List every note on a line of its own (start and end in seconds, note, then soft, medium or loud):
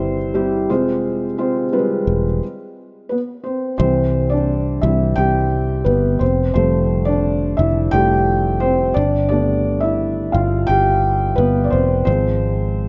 0.00 0.69 G1 medium
0.00 0.34 G3 medium
0.00 0.35 C4 medium
0.00 0.35 E4 medium
0.00 0.70 B4 medium
0.00 0.70 C5 medium
0.34 0.69 G3 medium
0.34 0.68 C4 medium
0.34 0.69 E4 medium
0.34 0.69 G4 medium
0.69 1.34 F1 medium
0.69 1.69 C3 medium
0.69 1.24 G#3 medium
0.69 1.25 C4 medium
0.69 1.25 F4 medium
0.69 1.25 C5 medium
1.38 1.63 G#3 medium
1.38 1.63 C4 medium
1.38 1.64 F4 medium
1.38 1.64 C5 medium
1.72 1.79 G3 medium
1.72 2.23 C4 medium
1.72 2.23 F4 medium
1.72 2.23 B4 medium
1.79 2.26 G#3 medium
2.07 2.40 E1 medium
3.09 3.19 B3 medium
3.09 3.17 B4 medium
3.44 3.78 C4 soft
3.44 3.76 C5 medium
3.78 4.79 C2 loud
3.78 4.81 E3 medium
3.78 4.81 G3 medium
3.78 4.28 C4 medium
3.78 4.32 C5 medium
4.30 4.80 D4 medium
4.30 4.78 D5 medium
4.82 5.15 C2 loud
4.82 5.14 E3 soft
4.82 5.14 G3 soft
4.82 5.14 C4 medium
4.82 5.16 E4 medium
4.82 5.18 E5 medium
5.16 5.83 C2 medium
5.16 5.83 G4 medium
5.16 5.88 G5 loud
5.85 6.18 G1 medium
5.85 6.19 B3 medium
5.85 6.21 B4 medium
6.19 6.53 F1 medium
6.19 6.53 C4 medium
6.19 6.52 C5 medium
6.54 7.55 F1 loud
6.54 7.55 F3 medium
6.54 7.55 G3 medium
6.54 7.55 A3 medium
6.54 7.04 C4 medium
6.54 7.08 C5 medium
7.05 7.56 D4 medium
7.05 7.54 D5 medium
7.57 7.91 F1 medium
7.57 7.67 E4 medium
7.57 7.65 E5 medium
7.91 8.93 F1 medium
7.91 8.24 F3 medium
7.91 8.24 G3 medium
7.91 8.25 A3 medium
7.91 8.59 G4 medium
7.91 8.63 G5 loud
8.60 8.95 C4 medium
8.60 8.97 C5 medium
8.94 10.31 G1 loud
8.94 9.29 D4 medium
8.94 9.27 D5 medium
9.29 10.30 G3 medium
9.29 10.30 A3 soft
9.29 10.31 B3 medium
9.29 9.80 D4 medium
9.29 9.83 D5 medium
9.80 10.31 E4 medium
9.80 10.35 E5 medium
10.32 10.67 G1 loud
10.32 10.67 F4 medium
10.32 10.69 F5 medium
10.67 11.34 G1 medium
10.67 11.34 G4 medium
10.67 11.39 G5 loud
11.36 11.70 G1 loud
11.36 11.64 B3 medium
11.36 11.62 B4 medium
11.64 11.72 D5 medium
11.70 12.05 F1 medium
11.70 12.05 C4 medium
11.70 12.03 C5 medium
12.05 12.88 G#1 loud
12.05 12.88 F3 medium
12.05 12.88 G#3 medium
12.05 12.88 C4 medium
12.05 12.88 C5 medium